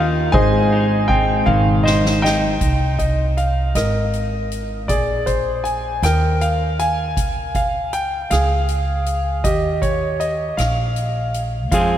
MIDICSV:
0, 0, Header, 1, 5, 480
1, 0, Start_track
1, 0, Key_signature, -4, "major"
1, 0, Tempo, 758534
1, 209, Time_signature, 6, 3, 24, 8
1, 7579, End_track
2, 0, Start_track
2, 0, Title_t, "Grand piano"
2, 0, Program_c, 0, 0
2, 0, Note_on_c, 0, 65, 61
2, 0, Note_on_c, 0, 77, 83
2, 200, Note_off_c, 0, 65, 0
2, 204, Note_on_c, 0, 80, 99
2, 215, Note_on_c, 0, 72, 77
2, 217, Note_off_c, 0, 77, 0
2, 217, Note_on_c, 0, 68, 75
2, 218, Note_on_c, 0, 75, 77
2, 682, Note_on_c, 0, 79, 81
2, 924, Note_on_c, 0, 77, 78
2, 933, Note_off_c, 0, 79, 0
2, 1141, Note_off_c, 0, 80, 0
2, 1146, Note_off_c, 0, 72, 0
2, 1147, Note_off_c, 0, 68, 0
2, 1148, Note_off_c, 0, 75, 0
2, 1149, Note_off_c, 0, 77, 0
2, 1161, Note_on_c, 0, 75, 73
2, 1407, Note_on_c, 0, 79, 81
2, 1411, Note_off_c, 0, 75, 0
2, 1420, Note_on_c, 0, 75, 63
2, 1881, Note_off_c, 0, 75, 0
2, 1890, Note_on_c, 0, 75, 59
2, 1904, Note_off_c, 0, 79, 0
2, 2134, Note_on_c, 0, 77, 63
2, 2138, Note_off_c, 0, 75, 0
2, 2375, Note_on_c, 0, 75, 65
2, 2381, Note_off_c, 0, 77, 0
2, 2386, Note_on_c, 0, 70, 48
2, 3075, Note_off_c, 0, 70, 0
2, 3089, Note_on_c, 0, 74, 68
2, 3099, Note_on_c, 0, 68, 51
2, 3116, Note_off_c, 0, 75, 0
2, 3330, Note_on_c, 0, 72, 64
2, 3339, Note_off_c, 0, 74, 0
2, 3555, Note_off_c, 0, 72, 0
2, 3568, Note_on_c, 0, 80, 72
2, 3792, Note_off_c, 0, 68, 0
2, 3818, Note_off_c, 0, 80, 0
2, 3819, Note_on_c, 0, 79, 72
2, 3831, Note_on_c, 0, 70, 55
2, 4059, Note_on_c, 0, 77, 75
2, 4064, Note_off_c, 0, 79, 0
2, 4280, Note_off_c, 0, 77, 0
2, 4300, Note_on_c, 0, 80, 89
2, 4314, Note_on_c, 0, 77, 53
2, 4517, Note_off_c, 0, 70, 0
2, 4772, Note_off_c, 0, 77, 0
2, 4782, Note_on_c, 0, 77, 75
2, 4791, Note_off_c, 0, 80, 0
2, 5018, Note_on_c, 0, 79, 74
2, 5024, Note_off_c, 0, 77, 0
2, 5256, Note_on_c, 0, 77, 78
2, 5263, Note_off_c, 0, 79, 0
2, 5268, Note_on_c, 0, 68, 54
2, 5955, Note_off_c, 0, 68, 0
2, 5973, Note_on_c, 0, 75, 75
2, 5984, Note_on_c, 0, 67, 57
2, 5995, Note_off_c, 0, 77, 0
2, 6212, Note_on_c, 0, 73, 69
2, 6220, Note_off_c, 0, 75, 0
2, 6454, Note_on_c, 0, 75, 68
2, 6460, Note_off_c, 0, 73, 0
2, 6673, Note_off_c, 0, 67, 0
2, 6691, Note_on_c, 0, 77, 73
2, 6700, Note_off_c, 0, 75, 0
2, 7207, Note_off_c, 0, 77, 0
2, 7413, Note_on_c, 0, 77, 79
2, 7427, Note_on_c, 0, 68, 60
2, 7579, Note_off_c, 0, 68, 0
2, 7579, Note_off_c, 0, 77, 0
2, 7579, End_track
3, 0, Start_track
3, 0, Title_t, "Clean electric guitar"
3, 0, Program_c, 1, 27
3, 0, Note_on_c, 1, 51, 76
3, 0, Note_on_c, 1, 63, 59
3, 0, Note_on_c, 1, 65, 55
3, 186, Note_off_c, 1, 51, 0
3, 186, Note_off_c, 1, 65, 0
3, 219, Note_on_c, 1, 44, 68
3, 457, Note_off_c, 1, 63, 0
3, 457, Note_on_c, 1, 63, 57
3, 692, Note_on_c, 1, 60, 55
3, 928, Note_on_c, 1, 51, 59
3, 1173, Note_on_c, 1, 72, 60
3, 1404, Note_off_c, 1, 63, 0
3, 1411, Note_on_c, 1, 63, 57
3, 1621, Note_off_c, 1, 51, 0
3, 1623, Note_off_c, 1, 60, 0
3, 1623, Note_off_c, 1, 72, 0
3, 1655, Note_off_c, 1, 44, 0
3, 3094, Note_off_c, 1, 63, 0
3, 7415, Note_on_c, 1, 53, 59
3, 7420, Note_on_c, 1, 56, 45
3, 7424, Note_on_c, 1, 60, 48
3, 7429, Note_on_c, 1, 65, 48
3, 7432, Note_on_c, 1, 68, 54
3, 7579, Note_off_c, 1, 53, 0
3, 7579, Note_off_c, 1, 56, 0
3, 7579, Note_off_c, 1, 60, 0
3, 7579, Note_off_c, 1, 65, 0
3, 7579, Note_off_c, 1, 68, 0
3, 7579, End_track
4, 0, Start_track
4, 0, Title_t, "Upright bass"
4, 0, Program_c, 2, 32
4, 0, Note_on_c, 2, 39, 85
4, 183, Note_off_c, 2, 39, 0
4, 215, Note_on_c, 2, 32, 90
4, 906, Note_off_c, 2, 32, 0
4, 927, Note_on_c, 2, 32, 82
4, 1624, Note_off_c, 2, 32, 0
4, 1655, Note_on_c, 2, 36, 76
4, 2349, Note_off_c, 2, 36, 0
4, 2373, Note_on_c, 2, 32, 67
4, 3094, Note_off_c, 2, 32, 0
4, 3094, Note_on_c, 2, 34, 82
4, 3789, Note_off_c, 2, 34, 0
4, 3812, Note_on_c, 2, 39, 72
4, 4536, Note_off_c, 2, 39, 0
4, 4536, Note_on_c, 2, 37, 82
4, 5229, Note_off_c, 2, 37, 0
4, 5259, Note_on_c, 2, 37, 69
4, 5976, Note_off_c, 2, 37, 0
4, 5976, Note_on_c, 2, 39, 82
4, 6669, Note_off_c, 2, 39, 0
4, 6693, Note_on_c, 2, 34, 63
4, 7416, Note_off_c, 2, 34, 0
4, 7416, Note_on_c, 2, 41, 79
4, 7579, Note_off_c, 2, 41, 0
4, 7579, End_track
5, 0, Start_track
5, 0, Title_t, "Drums"
5, 212, Note_on_c, 9, 36, 96
5, 215, Note_on_c, 9, 51, 75
5, 275, Note_off_c, 9, 36, 0
5, 278, Note_off_c, 9, 51, 0
5, 453, Note_on_c, 9, 51, 56
5, 516, Note_off_c, 9, 51, 0
5, 691, Note_on_c, 9, 36, 64
5, 693, Note_on_c, 9, 51, 47
5, 754, Note_off_c, 9, 36, 0
5, 756, Note_off_c, 9, 51, 0
5, 932, Note_on_c, 9, 48, 55
5, 995, Note_off_c, 9, 48, 0
5, 1178, Note_on_c, 9, 38, 64
5, 1242, Note_off_c, 9, 38, 0
5, 1299, Note_on_c, 9, 38, 60
5, 1362, Note_off_c, 9, 38, 0
5, 1422, Note_on_c, 9, 38, 75
5, 1485, Note_off_c, 9, 38, 0
5, 1651, Note_on_c, 9, 42, 53
5, 1652, Note_on_c, 9, 36, 76
5, 1715, Note_off_c, 9, 36, 0
5, 1715, Note_off_c, 9, 42, 0
5, 1892, Note_on_c, 9, 36, 54
5, 1893, Note_on_c, 9, 42, 41
5, 1956, Note_off_c, 9, 36, 0
5, 1956, Note_off_c, 9, 42, 0
5, 2135, Note_on_c, 9, 42, 36
5, 2199, Note_off_c, 9, 42, 0
5, 2374, Note_on_c, 9, 42, 51
5, 2382, Note_on_c, 9, 37, 76
5, 2437, Note_off_c, 9, 42, 0
5, 2445, Note_off_c, 9, 37, 0
5, 2616, Note_on_c, 9, 42, 38
5, 2679, Note_off_c, 9, 42, 0
5, 2857, Note_on_c, 9, 42, 42
5, 2921, Note_off_c, 9, 42, 0
5, 3095, Note_on_c, 9, 36, 72
5, 3095, Note_on_c, 9, 42, 55
5, 3159, Note_off_c, 9, 36, 0
5, 3159, Note_off_c, 9, 42, 0
5, 3333, Note_on_c, 9, 42, 44
5, 3335, Note_on_c, 9, 36, 52
5, 3397, Note_off_c, 9, 42, 0
5, 3398, Note_off_c, 9, 36, 0
5, 3575, Note_on_c, 9, 42, 44
5, 3639, Note_off_c, 9, 42, 0
5, 3816, Note_on_c, 9, 42, 63
5, 3824, Note_on_c, 9, 37, 79
5, 3880, Note_off_c, 9, 42, 0
5, 3888, Note_off_c, 9, 37, 0
5, 4057, Note_on_c, 9, 42, 45
5, 4121, Note_off_c, 9, 42, 0
5, 4299, Note_on_c, 9, 42, 47
5, 4362, Note_off_c, 9, 42, 0
5, 4537, Note_on_c, 9, 36, 76
5, 4538, Note_on_c, 9, 42, 64
5, 4600, Note_off_c, 9, 36, 0
5, 4601, Note_off_c, 9, 42, 0
5, 4776, Note_on_c, 9, 36, 57
5, 4776, Note_on_c, 9, 42, 44
5, 4839, Note_off_c, 9, 36, 0
5, 4839, Note_off_c, 9, 42, 0
5, 5016, Note_on_c, 9, 42, 40
5, 5080, Note_off_c, 9, 42, 0
5, 5256, Note_on_c, 9, 42, 58
5, 5264, Note_on_c, 9, 37, 77
5, 5319, Note_off_c, 9, 42, 0
5, 5328, Note_off_c, 9, 37, 0
5, 5495, Note_on_c, 9, 42, 42
5, 5559, Note_off_c, 9, 42, 0
5, 5735, Note_on_c, 9, 42, 44
5, 5798, Note_off_c, 9, 42, 0
5, 5975, Note_on_c, 9, 36, 80
5, 5976, Note_on_c, 9, 42, 56
5, 6039, Note_off_c, 9, 36, 0
5, 6039, Note_off_c, 9, 42, 0
5, 6215, Note_on_c, 9, 36, 54
5, 6217, Note_on_c, 9, 42, 43
5, 6278, Note_off_c, 9, 36, 0
5, 6280, Note_off_c, 9, 42, 0
5, 6457, Note_on_c, 9, 42, 39
5, 6520, Note_off_c, 9, 42, 0
5, 6697, Note_on_c, 9, 42, 58
5, 6705, Note_on_c, 9, 37, 80
5, 6760, Note_off_c, 9, 42, 0
5, 6768, Note_off_c, 9, 37, 0
5, 6935, Note_on_c, 9, 42, 39
5, 6999, Note_off_c, 9, 42, 0
5, 7177, Note_on_c, 9, 42, 42
5, 7240, Note_off_c, 9, 42, 0
5, 7415, Note_on_c, 9, 36, 75
5, 7415, Note_on_c, 9, 42, 59
5, 7478, Note_off_c, 9, 42, 0
5, 7479, Note_off_c, 9, 36, 0
5, 7579, End_track
0, 0, End_of_file